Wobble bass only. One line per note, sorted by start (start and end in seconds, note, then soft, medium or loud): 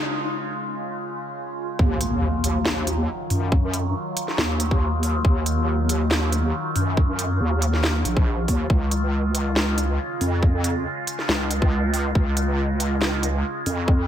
1.79 3.07 D#2 loud
3.30 3.93 F#2 loud
4.38 5.23 D#2 loud
5.25 6.52 D#2 loud
6.76 7.39 F#2 medium
7.40 8.03 D#2 loud
8.05 8.47 A#1 medium
8.48 8.68 D#2 loud
8.70 9.98 C#2 loud
10.21 10.84 F2 loud
11.29 12.14 C#2 loud
12.15 13.43 C#2 loud
13.66 14.07 F2 loud